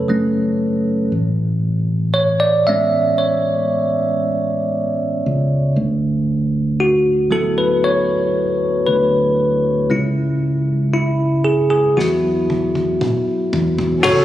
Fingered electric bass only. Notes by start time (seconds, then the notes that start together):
Already playing: F#1
1.12 A1
5.26 C#2
5.76 D2
8.88 D2
9.91 C#2
11.97 E2
13.53 E2
14.05 F#1